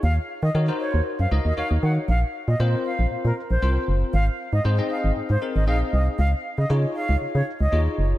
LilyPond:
<<
  \new Staff \with { instrumentName = "Flute" } { \time 4/4 \key des \major \tempo 4 = 117 f''16 r8 ees''16 r8 des''8 r16 f''16 r16 ees''16 f''16 r16 ges''16 r16 | f''16 r8 ees''16 r8 f''8 r16 bes'16 r16 c''8 r8. | f''16 r8 ees''16 r8 f''8 r16 c''16 r16 ees''16 f''16 r16 ees''16 r16 | f''16 r8 ees''16 r8 f''8 r16 des''16 r16 ees''8 r8. | }
  \new Staff \with { instrumentName = "Tine electric piano" } { \time 4/4 \key des \major r4 <ees' ges' bes' des''>16 <ees' ges' bes' c''>4 r16 <ees' ges' bes' ees''>8 <ees' ges' bes' des''>4 | r4 <c' f' bes' c''>4. r8 <c' f' bes' c''>4 | r4 <c' ees' aes' c''>16 <c' ees' aes' ees''>4 r16 <c' ees' aes' bes'>8 <c' ees' aes' ees''>4 | r4 <ees' f' aes' des''>4. r8 <ees' f' aes' des''>4 | }
  \new Staff \with { instrumentName = "FM bass" } { \clef bass \time 4/4 \key des \major ees,8 r16 ees16 ees8 r16 ees,16 r16 ges,16 des,16 ees,16 ees,16 ees,16 ees8 | bes,,8 r16 bes,16 bes,8 r16 bes,,16 bes,16 bes,16 r16 bes,,16 c,8 ges,,8 | aes,,8 r16 aes,16 aes,8 r16 aes,,16 aes,16 aes,16 r16 aes,,16 bes,,8 c,8 | des,8 r16 des16 des8 r16 des,16 des16 des16 r16 des,16 ees,8 ges,,8 | }
>>